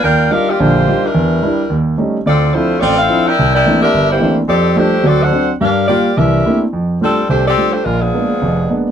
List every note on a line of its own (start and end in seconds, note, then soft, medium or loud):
0.04 0.27 D#2 medium
0.04 0.29 F4 medium
0.04 0.30 A#4 loud
0.04 0.30 D5 medium
0.04 0.30 G5 loud
0.30 0.49 G3 medium
0.30 0.49 D4 medium
0.30 0.48 D4 medium
0.30 0.49 D#4 medium
0.30 0.49 F4 medium
0.30 0.48 G4 medium
0.30 0.49 A#4 loud
0.30 0.48 F5 loud
0.49 0.60 A#3 medium
0.49 0.59 F4 medium
0.49 0.59 G4 medium
0.49 0.59 D5 medium
0.60 0.83 A#1 medium
0.60 0.83 D3 medium
0.60 1.05 A#3 medium
0.60 1.05 F4 loud
0.60 1.05 G4 medium
0.60 1.05 C5 loud
0.88 1.05 G3 medium
0.88 1.05 D4 soft
0.88 1.05 D#4 soft
0.88 1.05 F4 medium
1.05 1.88 G3 medium
1.05 1.71 D4 medium
1.05 1.71 E4 medium
1.05 1.88 A#4 medium
1.15 1.39 E2 medium
1.43 1.61 G3 medium
1.43 1.61 D4 medium
1.43 1.61 E4 medium
1.70 1.94 D#2 medium
1.98 2.16 G3 medium
1.98 2.16 A3 soft
1.98 2.16 C#4 soft
1.98 2.16 D#4 medium
2.26 2.50 D2 medium
2.26 2.52 C4 medium
2.26 2.52 F4 medium
2.26 2.53 A4 medium
2.26 2.52 D5 loud
2.54 2.72 F3 medium
2.54 2.79 A3 medium
2.54 2.72 C4 soft
2.54 2.72 D4 medium
2.54 2.79 E4 medium
2.54 2.72 E4 medium
2.54 2.79 F4 medium
2.54 2.79 C5 medium
2.79 3.06 A1 medium
2.79 2.98 C4 loud
2.79 2.98 F4 loud
2.79 2.98 A4 loud
2.79 2.82 C#5 medium
2.79 2.98 D5 loud
2.99 3.25 C4 loud
2.99 3.25 E4 medium
2.99 3.25 A4 medium
2.99 3.25 F5 loud
3.09 3.27 F3 soft
3.09 3.27 C4 soft
3.09 3.28 D4 soft
3.09 3.28 E4 medium
3.27 3.54 E4 loud
3.27 3.54 A#4 loud
3.27 3.53 D5 medium
3.27 3.53 G5 loud
3.39 3.62 C2 medium
3.54 3.81 E4 loud
3.54 3.81 A#4 loud
3.54 3.80 D5 loud
3.54 3.80 G5 loud
3.66 3.83 E3 medium
3.66 3.84 A3 medium
3.66 3.84 A#3 medium
3.66 3.84 C4 medium
3.66 3.84 D4 medium
3.82 4.08 D4 loud
3.82 4.08 G4 medium
3.82 4.08 A#4 loud
3.82 4.08 E5 loud
3.94 4.17 G1 medium
4.11 4.36 A#3 medium
4.11 4.37 E4 medium
4.11 4.37 G4 medium
4.11 4.37 C5 loud
4.20 4.39 E3 medium
4.20 4.39 A3 soft
4.20 4.39 A#3 soft
4.20 4.39 C4 soft
4.20 4.39 D4 medium
4.48 4.72 F2 medium
4.48 4.75 C4 medium
4.48 4.75 G4 medium
4.48 4.74 A4 medium
4.48 4.75 D5 loud
4.75 4.94 F3 medium
4.75 4.94 G3 medium
4.75 4.95 A3 medium
4.75 5.05 A3 medium
4.75 4.95 D4 medium
4.75 5.05 D4 medium
4.75 5.05 G4 medium
4.75 5.05 C5 loud
5.03 5.28 D2 medium
5.03 5.28 F#3 medium
5.03 5.23 C4 medium
5.03 5.23 F#4 medium
5.03 5.21 A4 medium
5.03 5.23 D5 loud
5.22 5.50 D4 medium
5.22 5.50 A4 medium
5.22 5.50 C5 loud
5.22 5.50 F#5 loud
5.32 5.50 F#3 medium
5.32 5.50 C4 soft
5.32 5.50 D4 medium
5.61 5.85 G2 medium
5.61 5.87 D4 medium
5.61 5.87 G4 medium
5.61 5.87 A#4 medium
5.61 5.87 F5 loud
5.88 6.07 G3 medium
5.88 6.14 A#3 medium
5.88 6.07 A#3 medium
5.88 6.14 F4 medium
5.88 6.07 F4 medium
5.88 6.14 G4 medium
5.88 6.14 D5 medium
6.17 6.41 C2 medium
6.17 6.41 E3 medium
6.17 6.62 D4 medium
6.17 6.62 G4 medium
6.17 6.62 A#4 medium
6.17 6.62 E5 loud
6.46 6.63 A3 soft
6.46 6.63 A#3 soft
6.46 6.63 C4 soft
6.46 6.64 D4 soft
6.46 6.63 E4 medium
6.73 6.97 F2 medium
7.01 7.19 G3 soft
7.01 7.28 G3 medium
7.01 7.19 A3 soft
7.01 7.28 C4 medium
7.01 7.19 D4 soft
7.01 7.28 D4 medium
7.01 7.19 F4 medium
7.01 7.28 A4 loud
7.29 7.53 C2 medium
7.29 7.45 A3 medium
7.29 7.44 D4 medium
7.29 7.45 G4 medium
7.29 7.45 C5 loud
7.46 7.72 C4 medium
7.46 7.71 G4 medium
7.46 7.72 A4 medium
7.46 7.72 D5 loud
7.57 7.75 G3 soft
7.57 7.75 A3 soft
7.57 7.75 D4 soft
7.57 7.75 F4 medium
7.72 7.84 A3 medium
7.72 7.84 D4 medium
7.72 7.84 G4 medium
7.72 7.83 C5 medium
7.84 8.09 A#1 medium
7.84 8.01 G#3 medium
7.84 8.01 D4 medium
7.84 8.01 F4 medium
7.84 8.01 A#4 medium
8.02 8.85 F3 medium
8.02 8.85 B3 medium
8.02 8.85 D4 medium
8.02 8.85 G#4 medium
8.14 8.31 G#3 soft
8.14 8.31 A#3 soft
8.14 8.31 B3 soft
8.14 8.32 D4 medium
8.42 8.65 F1 medium
8.42 8.65 F2 medium
8.69 8.87 G#3 soft
8.69 8.87 A#3 soft
8.69 8.87 B3 soft
8.69 8.87 D4 medium